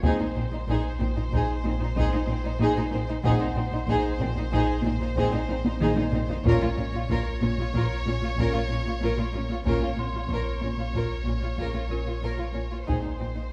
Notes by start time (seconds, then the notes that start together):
Already playing: D#5
0.03 A#1 A#2 G#3 C4 D#4 G#4 C5, taiko
0.20 A#2 D#4
0.36 A#1 A#2 C4 D#4, taiko low-mid
0.52 A#2 D#4, taiko low-mid
0.68 A#1 A#2 A#3 D#4 G#4, taiko
1.00 A#1 A#2 C4 D#4, taiko low-mid
1.16 A#2 D#4, taiko low-mid
1.32 A#1 A#2 D#4 G#4, taiko
1.64 A#1 A#2 C4 D#4
1.80 A#2 D#4, taiko low-mid
1.95 A#1 A#2 G#3 C4 D#4 G#4, taiko
2.11 A#2 D#4
2.15 D#4
2.27 A#1 A#2 C4 D#4
2.44 A#2 D#4
2.59 A#1 A#2 D#4 G#4
2.76 A#2 D#4, taiko low-mid
2.92 A#1 A#2 A#3 C4 D#4
3.08 A#2 D#4
3.24 A#1 A#2 G#3 C4 D#4 G#4 C5 F#5, taiko
3.40 A#2 D#4
3.55 A#1 A#2 C4 D#4, taiko low-mid
3.72 A#2 D#4, taiko low-mid
3.87 A#1 A#2 A#3 D#4 G#4, taiko
4.19 A#1 A#2 C4 D#4, taiko low-mid
4.36 A#2 D#4, taiko low-mid
4.51 A#1 A#2 D#4 G#4, taiko
4.83 A#1 A#2 C4 D#4
5.00 A#2 D#4, taiko low-mid
5.16 A#1 A#2 G#3 C4 D#4 G#4, taiko
5.32 A#2 D#4
5.48 A#1 A#2 C4 D#4
5.64 A#2 D#4, taiko high
5.80 A#1 A#2 D#4 G#4 D#5, taiko mid
5.97 A#2 D#4, taiko high
6.12 A#1 A#2 A#3 C4 D#4, taiko low-mid
6.29 A#2 D#4, taiko low
6.44 A#1 A#2 A#3 C#4 F4 A#4 C#5, taiko
6.61 A#2 F4
6.77 A#1 A#2 C#4 F4, taiko low-mid
6.93 A#2 F4, taiko low-mid
7.09 A#1 A#2 A#3 F4 A#4, taiko
7.41 A#1 A#2 C#4 F4, taiko low-mid
7.58 A#2 F4, taiko low-mid
7.73 A#1 A#2 F4 A#4, taiko
8.06 A#1 A#2 C#4 F4
8.22 A#2 F4, taiko low-mid
8.37 A#1 A#2 A#3 C#4 F4 A#4, taiko
8.53 A#2 F4
8.69 A#1 A#2 C#4 F4
8.86 A#2 F4
9.01 A#1 A#2 F4 A#4
9.18 A#2 F4, taiko low-mid
9.33 A#1 A#2 A#3 C#4 F4
9.48 A#2 F4
9.64 A#1 A#2 A#3 C#4 F4 A#4 C#5, taiko
9.80 A#2 F4
9.96 A#1 A#2 C4 F4 C6
10.01 C#4
10.13 A#2 F4
10.18 F4
10.28 A#1 A#2 A#3 F4, taiko
10.33 A#4
10.61 A#1 A#2 C#4 F4
10.77 A#2 F4
10.93 A#1 A#2 F4 A#4, taiko
11.25 A#1 A#2 C#4 F4
11.42 A#2 F4
11.57 A#1 A#2 C#3 A#3 F4 A#4, taiko
11.73 A#2 F4
11.89 A#1 A#2 C#4 F4 A#4
12.06 A#2 F4
12.22 A#1 A#2 F4 A#4
12.38 A#2 F4
12.54 A#1 A#2 A#3 C#4 F4
12.71 A#2 F4
12.87 A#1 A#2 G#3 C4 D#4 G#4 C5, taiko
13.03 A#2 D#4
13.19 A#1 A#2 C4 D#4
13.35 A#2 D#4